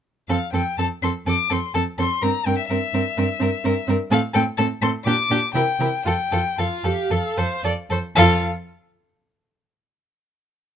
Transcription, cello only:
0, 0, Header, 1, 2, 480
1, 0, Start_track
1, 0, Key_signature, -1, "major"
1, 0, Tempo, 486224
1, 286, Time_signature, 4, 2, 24, 8
1, 1722, Tempo, 475436
1, 5562, Tempo, 523560
1, 7962, Tempo, 508906
1, 10401, End_track
2, 0, Start_track
2, 0, Title_t, "Cello"
2, 0, Program_c, 0, 42
2, 286, Note_on_c, 0, 41, 44
2, 365, Note_off_c, 0, 41, 0
2, 528, Note_on_c, 0, 41, 40
2, 607, Note_off_c, 0, 41, 0
2, 771, Note_on_c, 0, 41, 39
2, 850, Note_off_c, 0, 41, 0
2, 1011, Note_on_c, 0, 41, 42
2, 1090, Note_off_c, 0, 41, 0
2, 1245, Note_on_c, 0, 41, 50
2, 1324, Note_off_c, 0, 41, 0
2, 1483, Note_on_c, 0, 41, 42
2, 1562, Note_off_c, 0, 41, 0
2, 1720, Note_on_c, 0, 41, 41
2, 1801, Note_off_c, 0, 41, 0
2, 1963, Note_on_c, 0, 41, 42
2, 2044, Note_off_c, 0, 41, 0
2, 2203, Note_on_c, 0, 43, 49
2, 2284, Note_off_c, 0, 43, 0
2, 2445, Note_on_c, 0, 43, 48
2, 2525, Note_off_c, 0, 43, 0
2, 2683, Note_on_c, 0, 43, 42
2, 2764, Note_off_c, 0, 43, 0
2, 2923, Note_on_c, 0, 43, 43
2, 3003, Note_off_c, 0, 43, 0
2, 3167, Note_on_c, 0, 43, 55
2, 3248, Note_off_c, 0, 43, 0
2, 3403, Note_on_c, 0, 43, 49
2, 3484, Note_off_c, 0, 43, 0
2, 3642, Note_on_c, 0, 43, 50
2, 3723, Note_off_c, 0, 43, 0
2, 3879, Note_on_c, 0, 43, 54
2, 3960, Note_off_c, 0, 43, 0
2, 4110, Note_on_c, 0, 45, 64
2, 4191, Note_off_c, 0, 45, 0
2, 4351, Note_on_c, 0, 45, 57
2, 4432, Note_off_c, 0, 45, 0
2, 4588, Note_on_c, 0, 45, 50
2, 4669, Note_off_c, 0, 45, 0
2, 4824, Note_on_c, 0, 45, 50
2, 4905, Note_off_c, 0, 45, 0
2, 5069, Note_on_c, 0, 46, 63
2, 5150, Note_off_c, 0, 46, 0
2, 5309, Note_on_c, 0, 46, 53
2, 5390, Note_off_c, 0, 46, 0
2, 5557, Note_on_c, 0, 48, 54
2, 5631, Note_off_c, 0, 48, 0
2, 5789, Note_on_c, 0, 48, 48
2, 5863, Note_off_c, 0, 48, 0
2, 6029, Note_on_c, 0, 41, 51
2, 6102, Note_off_c, 0, 41, 0
2, 6268, Note_on_c, 0, 41, 49
2, 6342, Note_off_c, 0, 41, 0
2, 6511, Note_on_c, 0, 41, 41
2, 6585, Note_off_c, 0, 41, 0
2, 6750, Note_on_c, 0, 41, 45
2, 6823, Note_off_c, 0, 41, 0
2, 6990, Note_on_c, 0, 41, 51
2, 7063, Note_off_c, 0, 41, 0
2, 7237, Note_on_c, 0, 41, 47
2, 7310, Note_off_c, 0, 41, 0
2, 7476, Note_on_c, 0, 41, 39
2, 7549, Note_off_c, 0, 41, 0
2, 7718, Note_on_c, 0, 41, 46
2, 7792, Note_off_c, 0, 41, 0
2, 7954, Note_on_c, 0, 41, 71
2, 8226, Note_off_c, 0, 41, 0
2, 10401, End_track
0, 0, End_of_file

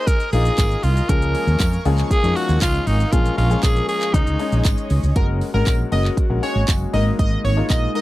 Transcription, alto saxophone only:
0, 0, Header, 1, 2, 480
1, 0, Start_track
1, 0, Tempo, 508475
1, 1031, Time_signature, 4, 2, 24, 8
1, 7564, End_track
2, 0, Start_track
2, 0, Title_t, "Alto saxophone"
2, 0, Program_c, 0, 65
2, 65, Note_on_c, 0, 70, 107
2, 300, Note_off_c, 0, 70, 0
2, 306, Note_on_c, 0, 68, 102
2, 789, Note_on_c, 0, 65, 88
2, 803, Note_off_c, 0, 68, 0
2, 1032, Note_on_c, 0, 70, 98
2, 1046, Note_off_c, 0, 65, 0
2, 1736, Note_off_c, 0, 70, 0
2, 1992, Note_on_c, 0, 68, 121
2, 2231, Note_on_c, 0, 66, 104
2, 2245, Note_off_c, 0, 68, 0
2, 2467, Note_off_c, 0, 66, 0
2, 2473, Note_on_c, 0, 65, 104
2, 2709, Note_on_c, 0, 63, 94
2, 2723, Note_off_c, 0, 65, 0
2, 2948, Note_on_c, 0, 65, 107
2, 2962, Note_off_c, 0, 63, 0
2, 3180, Note_off_c, 0, 65, 0
2, 3185, Note_on_c, 0, 65, 97
2, 3429, Note_on_c, 0, 68, 105
2, 3444, Note_off_c, 0, 65, 0
2, 3662, Note_off_c, 0, 68, 0
2, 3667, Note_on_c, 0, 68, 107
2, 3908, Note_on_c, 0, 63, 90
2, 3922, Note_off_c, 0, 68, 0
2, 4389, Note_off_c, 0, 63, 0
2, 7564, End_track
0, 0, End_of_file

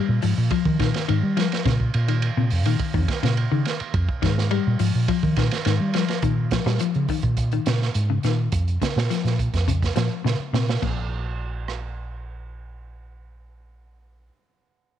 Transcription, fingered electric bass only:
0, 0, Header, 1, 3, 480
1, 0, Start_track
1, 0, Tempo, 573066
1, 1383, Time_signature, 4, 2, 24, 8
1, 12558, End_track
2, 0, Start_track
2, 0, Title_t, "Fingered electric bass"
2, 0, Program_c, 0, 33
2, 74, Note_on_c, 0, 46, 101
2, 166, Note_off_c, 0, 46, 0
2, 197, Note_on_c, 0, 44, 95
2, 291, Note_off_c, 0, 44, 0
2, 315, Note_on_c, 0, 46, 95
2, 406, Note_off_c, 0, 46, 0
2, 549, Note_on_c, 0, 51, 114
2, 642, Note_off_c, 0, 51, 0
2, 663, Note_on_c, 0, 46, 95
2, 762, Note_off_c, 0, 46, 0
2, 915, Note_on_c, 0, 44, 103
2, 1008, Note_off_c, 0, 44, 0
2, 1030, Note_on_c, 0, 55, 92
2, 1220, Note_off_c, 0, 55, 0
2, 1388, Note_on_c, 0, 46, 100
2, 1578, Note_off_c, 0, 46, 0
2, 1629, Note_on_c, 0, 46, 108
2, 1917, Note_off_c, 0, 46, 0
2, 1986, Note_on_c, 0, 46, 98
2, 2080, Note_off_c, 0, 46, 0
2, 2108, Note_on_c, 0, 41, 97
2, 2231, Note_off_c, 0, 41, 0
2, 2231, Note_on_c, 0, 46, 100
2, 2322, Note_off_c, 0, 46, 0
2, 2463, Note_on_c, 0, 41, 104
2, 2557, Note_off_c, 0, 41, 0
2, 2704, Note_on_c, 0, 46, 84
2, 2896, Note_off_c, 0, 46, 0
2, 2946, Note_on_c, 0, 49, 92
2, 3038, Note_off_c, 0, 49, 0
2, 3300, Note_on_c, 0, 41, 115
2, 3398, Note_off_c, 0, 41, 0
2, 3543, Note_on_c, 0, 44, 95
2, 3832, Note_off_c, 0, 44, 0
2, 3913, Note_on_c, 0, 46, 102
2, 4002, Note_off_c, 0, 46, 0
2, 4018, Note_on_c, 0, 44, 95
2, 4117, Note_off_c, 0, 44, 0
2, 4146, Note_on_c, 0, 46, 101
2, 4239, Note_off_c, 0, 46, 0
2, 4383, Note_on_c, 0, 51, 101
2, 4476, Note_off_c, 0, 51, 0
2, 4499, Note_on_c, 0, 46, 97
2, 4597, Note_off_c, 0, 46, 0
2, 4743, Note_on_c, 0, 44, 102
2, 4839, Note_off_c, 0, 44, 0
2, 4862, Note_on_c, 0, 55, 83
2, 5054, Note_off_c, 0, 55, 0
2, 5215, Note_on_c, 0, 46, 85
2, 5508, Note_off_c, 0, 46, 0
2, 5576, Note_on_c, 0, 46, 94
2, 5673, Note_off_c, 0, 46, 0
2, 5825, Note_on_c, 0, 49, 90
2, 5918, Note_off_c, 0, 49, 0
2, 6059, Note_on_c, 0, 46, 99
2, 6348, Note_off_c, 0, 46, 0
2, 6420, Note_on_c, 0, 46, 83
2, 6613, Note_off_c, 0, 46, 0
2, 6659, Note_on_c, 0, 44, 97
2, 6852, Note_off_c, 0, 44, 0
2, 6901, Note_on_c, 0, 46, 87
2, 7094, Note_off_c, 0, 46, 0
2, 7140, Note_on_c, 0, 41, 98
2, 7334, Note_off_c, 0, 41, 0
2, 7506, Note_on_c, 0, 46, 99
2, 7600, Note_off_c, 0, 46, 0
2, 7743, Note_on_c, 0, 46, 93
2, 7937, Note_off_c, 0, 46, 0
2, 7991, Note_on_c, 0, 41, 90
2, 8276, Note_off_c, 0, 41, 0
2, 8345, Note_on_c, 0, 46, 94
2, 8443, Note_off_c, 0, 46, 0
2, 8582, Note_on_c, 0, 46, 82
2, 8681, Note_off_c, 0, 46, 0
2, 8820, Note_on_c, 0, 46, 93
2, 9014, Note_off_c, 0, 46, 0
2, 9065, Note_on_c, 0, 34, 95
2, 11960, Note_off_c, 0, 34, 0
2, 12558, End_track
3, 0, Start_track
3, 0, Title_t, "Muted fingered electric bass strokes"
3, 3188, Note_on_c, 9, 29, 40
3, 3272, Note_off_c, 9, 29, 0
3, 3419, Note_on_c, 9, 29, 39
3, 3503, Note_off_c, 9, 29, 0
3, 8703, Note_on_c, 9, 29, 33
3, 8786, Note_off_c, 9, 29, 0
3, 12558, End_track
0, 0, End_of_file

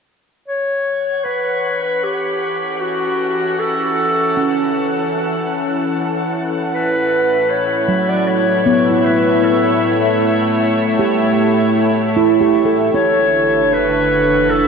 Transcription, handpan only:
0, 0, Header, 1, 2, 480
1, 0, Start_track
1, 0, Tempo, 779221
1, 292, Time_signature, 4, 2, 24, 8
1, 9041, End_track
2, 0, Start_track
2, 0, Title_t, "Handpan"
2, 0, Program_c, 0, 114
2, 774, Note_on_c, 0, 78, 35
2, 2147, Note_off_c, 0, 78, 0
2, 2692, Note_on_c, 0, 61, 53
2, 4067, Note_off_c, 0, 61, 0
2, 4856, Note_on_c, 0, 54, 46
2, 5335, Note_on_c, 0, 59, 68
2, 5486, Note_on_c, 0, 64, 46
2, 6228, Note_off_c, 0, 54, 0
2, 6708, Note_off_c, 0, 59, 0
2, 6772, Note_on_c, 0, 67, 56
2, 6844, Note_off_c, 0, 64, 0
2, 7494, Note_on_c, 0, 64, 56
2, 7636, Note_off_c, 0, 67, 0
2, 7643, Note_on_c, 0, 67, 49
2, 7793, Note_on_c, 0, 69, 44
2, 7966, Note_off_c, 0, 64, 0
2, 7973, Note_on_c, 0, 64, 54
2, 8323, Note_off_c, 0, 67, 0
2, 8458, Note_off_c, 0, 69, 0
2, 9041, Note_off_c, 0, 64, 0
2, 9041, End_track
0, 0, End_of_file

